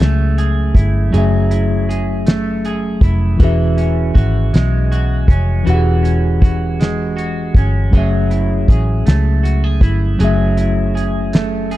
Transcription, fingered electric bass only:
0, 0, Header, 1, 2, 480
1, 0, Start_track
1, 0, Key_signature, 3, "minor"
1, 0, Tempo, 754717
1, 721, Time_signature, 6, 3, 24, 8
1, 7486, End_track
2, 0, Start_track
2, 0, Title_t, "Fingered electric bass"
2, 0, Program_c, 0, 33
2, 3, Note_on_c, 0, 37, 81
2, 456, Note_off_c, 0, 37, 0
2, 478, Note_on_c, 0, 31, 84
2, 695, Note_off_c, 0, 31, 0
2, 722, Note_on_c, 0, 30, 93
2, 1896, Note_off_c, 0, 30, 0
2, 1919, Note_on_c, 0, 29, 84
2, 2136, Note_off_c, 0, 29, 0
2, 2165, Note_on_c, 0, 28, 87
2, 2617, Note_off_c, 0, 28, 0
2, 2646, Note_on_c, 0, 32, 76
2, 2859, Note_off_c, 0, 32, 0
2, 2888, Note_on_c, 0, 35, 99
2, 3339, Note_off_c, 0, 35, 0
2, 3363, Note_on_c, 0, 29, 82
2, 3578, Note_off_c, 0, 29, 0
2, 3607, Note_on_c, 0, 28, 101
2, 4778, Note_off_c, 0, 28, 0
2, 4801, Note_on_c, 0, 31, 75
2, 5017, Note_off_c, 0, 31, 0
2, 5044, Note_on_c, 0, 30, 99
2, 5497, Note_off_c, 0, 30, 0
2, 5525, Note_on_c, 0, 33, 66
2, 5739, Note_off_c, 0, 33, 0
2, 5770, Note_on_c, 0, 37, 94
2, 6220, Note_off_c, 0, 37, 0
2, 6243, Note_on_c, 0, 31, 79
2, 6458, Note_off_c, 0, 31, 0
2, 6488, Note_on_c, 0, 30, 88
2, 7486, Note_off_c, 0, 30, 0
2, 7486, End_track
0, 0, End_of_file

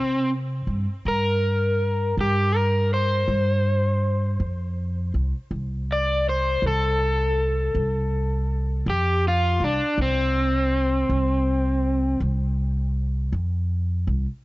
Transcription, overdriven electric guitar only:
0, 0, Header, 1, 2, 480
1, 0, Start_track
1, 0, Tempo, 744509
1, 2834, Time_signature, 12, 3, 24, 8
1, 9314, End_track
2, 0, Start_track
2, 0, Title_t, "Overdriven electric guitar"
2, 0, Program_c, 0, 29
2, 0, Note_on_c, 0, 60, 82
2, 193, Note_off_c, 0, 60, 0
2, 697, Note_on_c, 0, 70, 83
2, 1385, Note_off_c, 0, 70, 0
2, 1423, Note_on_c, 0, 67, 68
2, 1651, Note_off_c, 0, 67, 0
2, 1651, Note_on_c, 0, 70, 77
2, 1876, Note_off_c, 0, 70, 0
2, 1894, Note_on_c, 0, 72, 79
2, 3298, Note_off_c, 0, 72, 0
2, 3819, Note_on_c, 0, 74, 81
2, 4040, Note_off_c, 0, 74, 0
2, 4057, Note_on_c, 0, 72, 81
2, 4279, Note_off_c, 0, 72, 0
2, 4302, Note_on_c, 0, 69, 85
2, 5702, Note_off_c, 0, 69, 0
2, 5736, Note_on_c, 0, 67, 76
2, 5958, Note_off_c, 0, 67, 0
2, 5982, Note_on_c, 0, 65, 86
2, 6201, Note_off_c, 0, 65, 0
2, 6215, Note_on_c, 0, 62, 74
2, 6437, Note_off_c, 0, 62, 0
2, 6459, Note_on_c, 0, 60, 85
2, 7860, Note_off_c, 0, 60, 0
2, 9314, End_track
0, 0, End_of_file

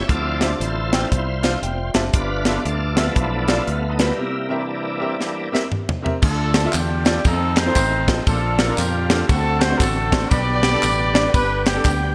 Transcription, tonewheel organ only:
0, 0, Header, 1, 2, 480
1, 0, Start_track
1, 0, Tempo, 511073
1, 88, Time_signature, 4, 2, 24, 8
1, 11410, End_track
2, 0, Start_track
2, 0, Title_t, "Tonewheel organ"
2, 0, Program_c, 0, 16
2, 72, Note_on_c, 0, 74, 92
2, 81, Note_on_c, 0, 53, 50
2, 85, Note_on_c, 0, 60, 44
2, 92, Note_on_c, 0, 65, 62
2, 92, Note_on_c, 0, 69, 60
2, 93, Note_on_c, 0, 64, 58
2, 439, Note_off_c, 0, 53, 0
2, 441, Note_off_c, 0, 60, 0
2, 445, Note_off_c, 0, 64, 0
2, 559, Note_on_c, 0, 72, 72
2, 569, Note_off_c, 0, 65, 0
2, 575, Note_off_c, 0, 74, 0
2, 577, Note_on_c, 0, 64, 49
2, 580, Note_on_c, 0, 65, 55
2, 1012, Note_off_c, 0, 69, 0
2, 1336, Note_off_c, 0, 64, 0
2, 1339, Note_on_c, 0, 53, 47
2, 1342, Note_on_c, 0, 60, 42
2, 1347, Note_on_c, 0, 64, 50
2, 1504, Note_off_c, 0, 53, 0
2, 1506, Note_off_c, 0, 60, 0
2, 1508, Note_off_c, 0, 64, 0
2, 1788, Note_off_c, 0, 72, 0
2, 1799, Note_off_c, 0, 65, 0
2, 2008, Note_on_c, 0, 62, 70
2, 2009, Note_on_c, 0, 65, 66
2, 2022, Note_on_c, 0, 71, 99
2, 2478, Note_off_c, 0, 62, 0
2, 2480, Note_off_c, 0, 65, 0
2, 2489, Note_on_c, 0, 62, 65
2, 2491, Note_on_c, 0, 65, 61
2, 2495, Note_on_c, 0, 69, 86
2, 2509, Note_off_c, 0, 71, 0
2, 2778, Note_on_c, 0, 53, 48
2, 2784, Note_on_c, 0, 57, 48
2, 2786, Note_on_c, 0, 59, 47
2, 2793, Note_on_c, 0, 64, 60
2, 2957, Note_off_c, 0, 59, 0
2, 2960, Note_off_c, 0, 57, 0
2, 2962, Note_off_c, 0, 65, 0
2, 2968, Note_on_c, 0, 59, 65
2, 2971, Note_on_c, 0, 57, 65
2, 2974, Note_on_c, 0, 65, 87
2, 2986, Note_off_c, 0, 69, 0
2, 3108, Note_off_c, 0, 65, 0
2, 3261, Note_off_c, 0, 59, 0
2, 3262, Note_off_c, 0, 57, 0
2, 3272, Note_on_c, 0, 59, 63
2, 3273, Note_on_c, 0, 57, 65
2, 3275, Note_on_c, 0, 65, 86
2, 3409, Note_off_c, 0, 53, 0
2, 3411, Note_off_c, 0, 62, 0
2, 3417, Note_off_c, 0, 64, 0
2, 3658, Note_on_c, 0, 63, 58
2, 3682, Note_off_c, 0, 65, 0
2, 3746, Note_off_c, 0, 63, 0
2, 3751, Note_on_c, 0, 55, 50
2, 3751, Note_on_c, 0, 58, 54
2, 3751, Note_on_c, 0, 64, 83
2, 3892, Note_off_c, 0, 57, 0
2, 3892, Note_off_c, 0, 59, 0
2, 4217, Note_off_c, 0, 58, 0
2, 4221, Note_on_c, 0, 52, 53
2, 4228, Note_on_c, 0, 58, 49
2, 4229, Note_on_c, 0, 62, 56
2, 4851, Note_off_c, 0, 52, 0
2, 4855, Note_off_c, 0, 58, 0
2, 4855, Note_off_c, 0, 62, 0
2, 4880, Note_on_c, 0, 52, 45
2, 4882, Note_on_c, 0, 58, 45
2, 4887, Note_on_c, 0, 62, 52
2, 5156, Note_off_c, 0, 52, 0
2, 5158, Note_off_c, 0, 58, 0
2, 5160, Note_off_c, 0, 62, 0
2, 5332, Note_off_c, 0, 55, 0
2, 5332, Note_off_c, 0, 64, 0
2, 5839, Note_on_c, 0, 57, 61
2, 5842, Note_on_c, 0, 50, 64
2, 5842, Note_on_c, 0, 65, 70
2, 6796, Note_off_c, 0, 50, 0
2, 6810, Note_on_c, 0, 60, 66
2, 6812, Note_on_c, 0, 51, 74
2, 7744, Note_off_c, 0, 57, 0
2, 7760, Note_off_c, 0, 51, 0
2, 7760, Note_off_c, 0, 60, 0
2, 7761, Note_on_c, 0, 58, 61
2, 7763, Note_on_c, 0, 50, 65
2, 7765, Note_on_c, 0, 53, 58
2, 8696, Note_off_c, 0, 65, 0
2, 8714, Note_off_c, 0, 58, 0
2, 8717, Note_off_c, 0, 53, 0
2, 8725, Note_on_c, 0, 66, 79
2, 8727, Note_on_c, 0, 57, 67
2, 8730, Note_on_c, 0, 60, 66
2, 9677, Note_off_c, 0, 66, 0
2, 9678, Note_off_c, 0, 57, 0
2, 9679, Note_off_c, 0, 60, 0
2, 9688, Note_on_c, 0, 67, 76
2, 9690, Note_on_c, 0, 55, 61
2, 9693, Note_on_c, 0, 59, 60
2, 11410, Note_off_c, 0, 50, 0
2, 11410, Note_off_c, 0, 55, 0
2, 11410, Note_off_c, 0, 59, 0
2, 11410, Note_off_c, 0, 67, 0
2, 11410, End_track
0, 0, End_of_file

